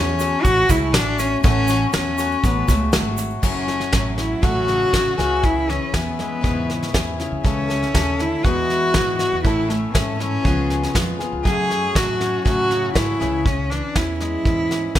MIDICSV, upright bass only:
0, 0, Header, 1, 2, 480
1, 0, Start_track
1, 0, Key_signature, 3, "major"
1, 0, Tempo, 500000
1, 1381, Time_signature, 4, 2, 24, 8
1, 14392, End_track
2, 0, Start_track
2, 0, Title_t, "Upright bass"
2, 0, Program_c, 0, 32
2, 0, Note_on_c, 0, 40, 101
2, 329, Note_off_c, 0, 40, 0
2, 431, Note_on_c, 0, 33, 92
2, 619, Note_off_c, 0, 33, 0
2, 670, Note_on_c, 0, 37, 106
2, 906, Note_off_c, 0, 37, 0
2, 906, Note_on_c, 0, 33, 89
2, 1285, Note_off_c, 0, 33, 0
2, 1384, Note_on_c, 0, 33, 113
2, 1762, Note_off_c, 0, 33, 0
2, 1866, Note_on_c, 0, 40, 96
2, 2243, Note_off_c, 0, 40, 0
2, 2345, Note_on_c, 0, 33, 96
2, 2532, Note_off_c, 0, 33, 0
2, 2578, Note_on_c, 0, 37, 96
2, 2824, Note_on_c, 0, 32, 89
2, 2838, Note_off_c, 0, 37, 0
2, 3201, Note_off_c, 0, 32, 0
2, 3294, Note_on_c, 0, 30, 92
2, 3675, Note_off_c, 0, 30, 0
2, 3775, Note_on_c, 0, 33, 89
2, 4156, Note_off_c, 0, 33, 0
2, 4253, Note_on_c, 0, 33, 85
2, 4635, Note_off_c, 0, 33, 0
2, 4737, Note_on_c, 0, 33, 73
2, 4926, Note_off_c, 0, 33, 0
2, 4975, Note_on_c, 0, 37, 90
2, 5547, Note_off_c, 0, 37, 0
2, 5700, Note_on_c, 0, 40, 83
2, 6080, Note_off_c, 0, 40, 0
2, 6189, Note_on_c, 0, 40, 78
2, 6566, Note_off_c, 0, 40, 0
2, 6663, Note_on_c, 0, 40, 87
2, 6948, Note_off_c, 0, 40, 0
2, 7024, Note_on_c, 0, 37, 68
2, 7117, Note_off_c, 0, 37, 0
2, 7147, Note_on_c, 0, 37, 95
2, 7526, Note_off_c, 0, 37, 0
2, 7627, Note_on_c, 0, 39, 84
2, 8007, Note_off_c, 0, 39, 0
2, 8110, Note_on_c, 0, 40, 83
2, 8489, Note_off_c, 0, 40, 0
2, 8589, Note_on_c, 0, 44, 72
2, 8874, Note_off_c, 0, 44, 0
2, 8949, Note_on_c, 0, 40, 72
2, 9043, Note_off_c, 0, 40, 0
2, 9072, Note_on_c, 0, 33, 88
2, 9451, Note_off_c, 0, 33, 0
2, 9551, Note_on_c, 0, 44, 92
2, 9931, Note_off_c, 0, 44, 0
2, 10034, Note_on_c, 0, 37, 85
2, 10414, Note_off_c, 0, 37, 0
2, 10514, Note_on_c, 0, 41, 73
2, 10798, Note_off_c, 0, 41, 0
2, 10869, Note_on_c, 0, 37, 75
2, 10964, Note_off_c, 0, 37, 0
2, 10995, Note_on_c, 0, 42, 90
2, 11375, Note_off_c, 0, 42, 0
2, 11477, Note_on_c, 0, 45, 80
2, 11856, Note_off_c, 0, 45, 0
2, 11963, Note_on_c, 0, 45, 77
2, 12340, Note_off_c, 0, 45, 0
2, 12436, Note_on_c, 0, 44, 81
2, 12625, Note_off_c, 0, 44, 0
2, 12681, Note_on_c, 0, 37, 95
2, 13249, Note_off_c, 0, 37, 0
2, 13398, Note_on_c, 0, 40, 86
2, 13776, Note_off_c, 0, 40, 0
2, 13879, Note_on_c, 0, 40, 82
2, 14257, Note_off_c, 0, 40, 0
2, 14355, Note_on_c, 0, 40, 76
2, 14392, Note_off_c, 0, 40, 0
2, 14392, End_track
0, 0, End_of_file